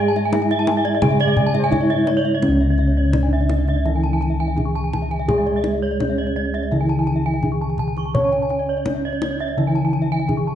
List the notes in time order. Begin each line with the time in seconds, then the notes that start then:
Already playing: G#2 G#3 G#4
0.08 A5
0.16 E5, kendang slap
0.25 G#5
0.33 D4 E4 E5, kendang high
0.42 G#5
0.51 E5, kendang slap
0.59 A5
0.67 G#5, kendang high
0.77 E5
0.85 D5, kendang slap
0.95 E5
1.02 C#3 G#3 G#4 G#5, kendang high, kendang low
1.11 E5
1.20 D5, kendang slap
1.28 E5
1.37 G#5, kendang low
1.46 A5
1.54 C#5 E5, kendang slap
1.64 G#5
1.71 D4 E4 E5, kendang low
1.81 D5
1.90 E5, kendang slap
1.98 C#5
2.07 D5, kendang high
2.17 C#5
2.25 E5
2.35 D5
2.42 C#3 C#4 C#5, kendang high, kendang low
2.48 C#2 D5
2.61 E5
2.70 D5
2.78 E5, kendang slap
2.87 C#5
2.97 D5
3.05 C#5
3.13 D4 D5, kendang slap, kendang high, kendang low
3.23 G#5
3.33 E5
3.41 D5
3.49 E5, kendang slap, kendang high
3.59 D5
3.68 E5, kendang slap
3.76 D5
3.85 E3 E4 E5, kendang slap
3.96 G#5
4.04 A5, kendang slap
4.13 G#5
4.21 A5, kendang slap
4.30 E5
4.40 G#5
4.48 E5
4.56 D4 G#4 G#5, kendang low
4.65 C#6
4.75 A5
4.84 G#5
4.93 A5, kendang high, kendang low
5.02 E5
5.11 G#5, kendang slap
5.19 E5
5.28 G#3 G#4 G#5, kendang high, kendang low
5.38 E5
5.47 D5, kendang slap
5.56 E5
5.64 D5, kendang slap, kendang high
5.73 E5
5.82 C#5
5.91 D5
6.00 C#4 D4 C#5, kendang slap, kendang high, kendang low
6.10 E5
6.18 D5
6.27 C#5
6.36 D5, kendang slap
6.45 C#5
6.54 E5, kendang slap
6.63 D5
6.71 C#3 E3 E4 E5, kendang slap
6.81 G#5
6.89 A5, kendang slap
6.99 G#5
7.07 A5, kendang slap
7.16 E5
7.26 G#5
7.34 E5
7.43 D4 G#4 G#5, kendang low
7.52 C#6
7.61 A5
7.70 G#5
7.78 A5, kendang low
7.88 G#5
7.97 C#6, kendang slap
8.05 A5
8.15 C#4 C#5 C#6, kendang high, kendang low
8.24 A5
8.32 G#5, kendang slap
8.42 A5
8.50 G#5, kendang slap
8.59 D5
8.69 C#5
8.77 D5
8.86 C#4 D4 C#5, kendang slap, kendang high, kendang low
8.95 E5
9.05 D5
9.13 C#5
9.22 D5, kendang slap, kendang high
9.31 C#5
9.40 E5, kendang slap
9.48 D5
9.57 C#3 E3 E4 E5, kendang slap
9.67 G#5
9.75 A5, kendang slap
9.85 G#5
9.93 A5, kendang slap
10.02 E5
10.12 G#5
10.20 E5
10.28 D4 G#4 G#5, kendang low
10.37 C#6
10.47 A5